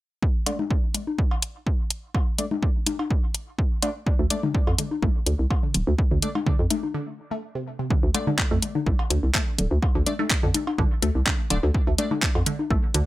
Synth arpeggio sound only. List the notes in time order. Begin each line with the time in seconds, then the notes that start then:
4.19 A3
4.43 D3
4.79 D3
5.03 A3
5.27 D3
5.63 D3
5.87 A3
6.11 D3
6.47 D3
6.71 A3
6.94 D3
7.31 A3
7.55 C3
7.79 C3
7.90 D3
8.27 D3
8.51 A3
8.75 D3
9.11 D3
9.35 A3
9.58 D3
9.95 D3
10.19 A3
10.43 D3
10.78 D3
11.02 A3
11.26 D3
11.63 D3
11.87 A3
12.11 D3
12.47 D3
12.71 A3
12.95 D3